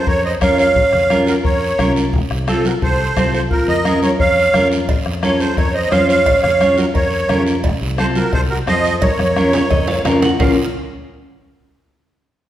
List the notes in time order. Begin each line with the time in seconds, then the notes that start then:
0.07 F2 A#4 C#5, bombo low, long guiro
0.25 C5 D#5
0.41 F2 C#4 F4 A#4 C#5 F5, bombo low, bombo rim, high conga, short guiro
0.58 C#5 F5, short guiro
0.76 A#1, bombo low, long guiro
0.93 F2, bombo rim, low conga
1.10 C#4 F4 A#4, bombo rim, high conga, short guiro
1.27 F#4 A#4, short guiro
1.43 F2 A#4 C#5, bombo low, long guiro
1.78 C2 C#4 F4 A#4, bombo low, bombo rim, high conga, low conga, short guiro
1.96 short guiro
2.13 F1, bombo low, long guiro
2.31 C2, bombo rim
2.47 C4 F4 A4, bombo rim, high conga, short guiro
2.65 F#4 A#4, high conga, short guiro
2.82 C2 A4 C5, bombo low, long guiro
3.16 C2 C4 F4 A4, bombo low, bombo rim, high conga, short guiro
3.34 A4 C5, short guiro
3.51 A#1 F4 A#4, bombo low, long guiro
3.68 F2 A#4 D#5, low conga
3.85 C#4 F4 A#4, bombo rim, high conga, short guiro
4.02 A#4 C#5, high conga, short guiro
4.19 F2 C#5 F5, bombo low, long guiro
4.53 F2 C#4 F4 A#4, bombo rim, high conga, low conga, short guiro
4.72 short guiro
4.89 A#1, bombo low, cowbell, long guiro
5.06 F2, bombo rim
5.23 C#4 F4 A4 A#4 C#5, bombo rim, high conga, short guiro
5.40 A4 C5, short guiro
5.57 F2 A#4 C#5, bombo low, cowbell, long guiro
5.74 C5 D#5
5.90 F2 C#4 F4 C5 C#5 F5, bombo rim, high conga, low timbale, short guiro
6.08 C#5 F5, short guiro
6.26 A#1, bombo low, cowbell, long guiro
6.42 F2 C#5 F5, bombo rim, low conga
6.60 C#4 F4 C#5, bombo rim, high conga, short guiro
6.77 F#4 A#4, high conga, short guiro
6.94 F2 A#4 C#5, bombo low, cowbell, long guiro
7.29 F2 C#4 F4 A#4, bombo rim, high conga, low conga, short guiro
7.47 short guiro
7.63 F1, bombo low, cowbell, long guiro
7.81 C2
7.98 C4 F4 A4 C5, bombo rim, high conga, short guiro
8.15 F#4 A#4, high conga, short guiro
8.33 C2 A4 C5, bombo low, cowbell, long guiro
8.50 F#4 A#4
8.67 F2 C4 F4 A4 C5 D#5, bombo rim, high conga, short guiro
8.85 short guiro
9.02 A#1 A#4 C#5, bombo low, cowbell, high conga, long guiro
9.19 F2, bombo rim, high conga
9.36 C#4 F4 A#4, bombo rim, high conga, short guiro
9.53 C#5, low conga, high timbale, short guiro
9.71 F2 D#5, bombo low, cowbell, low conga, long guiro
9.88 F5, low timbale
10.05 F2 C#4 F4 A#4 A#5, bombo rim, low conga, low timbale, short guiro
10.22 F#5, low conga, low timbale, short guiro
10.39 A#1 C#4 F4 A#4 F5, bombo low, low conga, low timbale, long guiro